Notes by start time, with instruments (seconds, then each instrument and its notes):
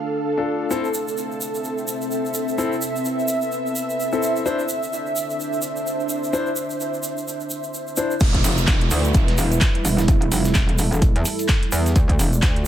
Already playing: analog synth pad D4 A4 F5, ambient pad D4 A4 F5
0.37 grand piano D4 F4 A4
0.71 grand piano C4 E4 A4, analog synth pad C4 E5, ambient pad C4, shaker
0.85 shaker
0.94 shaker
1.08 shaker
1.17 shaker
1.31 shaker
1.36 ambient pad E5
1.41 shaker
1.55 shaker
1.64 shaker
1.78 shaker
1.88 shaker
2.01 shaker
2.11 shaker
2.26 shaker
2.34 shaker
2.48 shaker
2.58 grand piano C4 E4 A4, analog synth pad B4, shaker
2.72 shaker
2.82 shaker
2.96 shaker
3.05 shaker
3.19 shaker
3.28 shaker
3.41 shaker
3.52 shaker
3.66 shaker
3.76 shaker
3.90 shaker
4.00 shaker
4.12 grand piano C4 E4 A4, shaker
4.23 shaker
4.36 shaker
4.46 grand piano D4 E4 C5, analog synth pad D4 C5, ambient pad D4, shaker
4.59 shaker
4.69 shaker
4.83 shaker
4.91 ambient pad C5, shaker
5.06 shaker
5.16 shaker
5.30 shaker
5.40 shaker
5.53 shaker
5.62 shaker
5.76 shaker
5.87 shaker
6.00 shaker
6.09 shaker
6.24 shaker
6.33 grand piano D4 E4 C5, shaker
6.46 shaker
6.56 shaker
6.70 shaker
6.80 shaker
6.94 shaker
7.03 shaker
7.18 shaker
7.28 shaker
7.40 shaker
7.50 shaker
7.63 shaker
7.74 shaker
7.87 shaker
7.97 grand piano D4 E4 C5, shaker
8.11 shaker
8.20 wobble bass E1, analog synth pad G3 E4 B4, kick, closed hi-hat, crash, downlifter, shaker
8.34 kick, closed hi-hat
8.44 wobble bass F1, closed hi-hat, open hi-hat, shaker
8.58 closed hi-hat, shaker
8.67 wobble bass E1, kick, snare, clap, closed hi-hat, shaker
8.81 closed hi-hat
8.91 wobble bass D2, closed hi-hat, open hi-hat, shaker
9.04 closed hi-hat, shaker
9.14 wobble bass E1, kick, closed hi-hat, shaker
9.28 snare, closed hi-hat
9.38 closed hi-hat, open hi-hat, shaker
9.52 closed hi-hat, shaker
9.61 kick, snare, clap, closed hi-hat, shaker
9.75 closed hi-hat
9.85 wobble bass E1, closed hi-hat, open hi-hat, shaker
9.98 snare, closed hi-hat, shaker
10.08 analog synth pad A4, kick, closed hi-hat, shaker
10.22 closed hi-hat
10.32 wobble bass F1, closed hi-hat, open hi-hat, shaker
10.44 snare, closed hi-hat, shaker
10.54 wobble bass E1, kick, snare, clap, closed hi-hat, shaker
10.69 closed hi-hat
10.78 closed hi-hat, open hi-hat, shaker
10.92 wobble bass E1, closed hi-hat, shaker
11.02 kick, closed hi-hat, shaker
11.16 wobble bass E2, closed hi-hat
11.25 closed hi-hat, open hi-hat, shaker
11.39 closed hi-hat, shaker
11.48 kick, snare, clap, closed hi-hat, shaker
11.63 closed hi-hat
11.72 wobble bass E2, closed hi-hat, open hi-hat, shaker
11.86 snare, closed hi-hat, shaker
11.96 wobble bass D2, analog synth pad A3 F4 D5, kick, closed hi-hat, shaker
12.09 kick, closed hi-hat
12.19 wobble bass E1, closed hi-hat, open hi-hat, shaker
12.33 closed hi-hat, shaker
12.42 wobble bass D2, kick, snare, clap, closed hi-hat, shaker
12.56 closed hi-hat